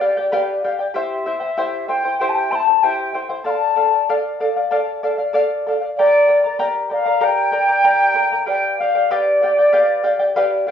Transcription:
Already playing: quena D5
0.01 charango G4 D5 F5 G5
0.17 charango G4 D5 G5
0.32 charango G4 B4 D5 F5 G5
0.64 charango G4 D5 F5 G5
0.79 charango G4 D5 G5
0.94 charango E4 G4 C5 E5 G5, quena E5
1.26 charango E4 C5 E5 G5
1.40 charango E4 C5 G5
1.57 charango E4 G4 C5 E5 G5
1.88 charango E4 C5 E5 G5, quena G5
2.04 charango E4 C5 G5
2.18 charango E4 G4 C5 E5 G5, quena G5
2.29 quena A5
2.35 quena G5
2.51 charango E4 C5 E5 G5, quena A5 C6
2.67 charango E4 C5 G5
2.83 charango E4 G4 C5 E5 G5, quena G5
3.13 charango E4 C5 E5 G5, quena G5
3.29 charango E4 C5 G5
3.44 charango A4 D5 F5, quena C6
3.50 quena A5
3.76 charango A4 D5 F5
3.93 charango D5 F5
4.09 charango A4 D5 F5
4.40 charango A4 D5 F5
4.56 charango D5 F5
4.71 charango A4 D5 F5
5.03 charango A4 D5 F5
5.18 charango D5 F5
5.33 charango A4 D5 F5
5.66 charango A4 D5 F5
5.82 charango D5 F5
5.97 charango G4 A#4 D5 G5 A#5, quena D5
6.28 charango A#4 D5 G5 A#5
6.44 charango A#4 D5 A#5
6.59 charango G4 A#4 D5 G5 A#5
6.89 charango A#4 D5 G5 A#5, quena F5
7.06 charango A#4 D5 A#5
7.20 charango G4 A#4 D5 G5 A#5, quena G5
7.51 charango A#4 D5 G5 A#5
7.68 charango A#4 D5 A#5
7.84 charango G4 A#4 D5 G5 A#5
8.14 charango A#4 D5 G5 A#5
8.32 charango A#4 D5 A#5
8.46 charango G4 B4 D5 F5 G5, quena G5
8.79 charango G4 D5 F5 G5, quena F5
8.95 charango G4 D5 G5
9.11 charango G4 B4 D5 F5 G5, quena D5
9.42 charango G4 D5 F5 G5
9.58 charango G4 D5 G5
9.72 charango G4 B4 D5 F5 G5
10.04 charango G4 D5 F5 G5
10.19 charango G4 D5 G5
10.36 charango G4 B4 D5 F5 G5
10.67 charango G4 D5 F5

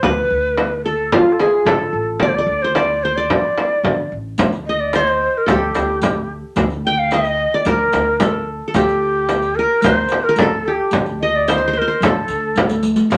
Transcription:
0.03 upright bass D2, qanun B4, ney B4, frame drum
0.31 upright bass D2
0.58 frame drum
0.84 ney A4, qanun A4
1.12 qanun F4, ney F4, frame drum
1.32 ney A4
1.40 qanun G#4, ney G#4, frame drum
1.65 upright bass D3, ney A4, qanun A4, frame drum
1.93 upright bass A1
2.20 upright bass D2, ney D5, qanun D5, frame drum
2.28 ney C5
2.35 ney D5, qanun D5
2.47 upright bass D2
2.62 ney C5, qanun C5
2.75 qanun D5, ney D5, frame drum
3.03 ney C5, qanun C5
3.16 ney D5, qanun D5
3.30 frame drum
3.58 frame drum
3.84 upright bass D3, frame drum
4.12 upright bass A1
4.38 upright bass D2, riq, frame drum
4.52 riq
4.67 ney D#5, qanun D#5
4.80 ney D5
4.93 ney C5, qanun C5, riq, frame drum
5.07 riq
5.38 ney A#4
5.46 upright bass D2, qanun G4 A4, riq, frame drum
5.52 ney G4
5.74 upright bass D2, riq, frame drum
6.02 riq, frame drum
6.56 upright bass D2, riq, frame drum
6.70 riq
6.86 ney G5, qanun G5
6.99 ney F5
7.11 ney D#5, qanun D#5, riq, frame drum
7.24 riq
7.54 qanun D5, ney D5
7.65 upright bass D2, qanun A#4, ney A#4, riq, frame drum
7.92 upright bass D2, riq, frame drum
8.20 qanun A4, riq, frame drum
8.68 qanun A4
8.74 upright bass D2, ney G4, qanun G4, riq, frame drum
8.88 riq
9.29 riq, frame drum
9.42 riq
9.56 ney A#4, qanun A#4
9.82 upright bass D2, ney C5, qanun C5, riq, frame drum
10.08 upright bass D2, riq, frame drum
10.24 ney A#4
10.29 qanun A#4
10.36 ney A4, riq, frame drum
10.42 qanun A4
10.66 ney G4, qanun G4
10.91 upright bass D2, riq, frame drum
11.06 riq
11.21 ney D#5, qanun D#5
11.36 ney D5
11.48 qanun C5, ney C5, riq, frame drum
11.58 qanun C5
11.68 qanun C5
11.73 qanun C5
11.78 ney A#4, qanun C5
11.88 qanun C5, riq
12.00 upright bass D2, riq, frame drum
12.05 qanun A4, ney A4
12.28 upright bass D2, riq
12.56 riq, frame drum
12.69 riq
12.83 riq
12.96 riq
13.10 upright bass D2, riq, frame drum

